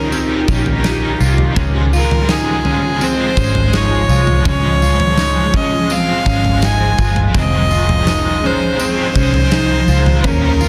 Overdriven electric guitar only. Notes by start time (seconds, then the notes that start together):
Already playing: D#3 F3 C#4 D#4 G4
0.12 F3 C#4 D#4
0.16 G4
0.48 D#4 G4
0.52 C#4
1.54 C#3 F3 G#3
1.60 C4 G#4
3.00 F3 G#3 C4
3.05 G#4
3.35 G#4
3.40 G#3
4.43 C#3 F3 G#3
4.51 G#4
5.89 F3 G#3 C4
5.93 G#4
6.24 C4 G#4
6.29 G#3
7.32 F2 D#3
7.37 G#3 C4 G#4
8.78 D#3 G#3 C4
8.82 G#4
9.15 G#3 C4 G#4
9.19 D#3
10.23 D#3 F3 C#4
10.28 D#4 G4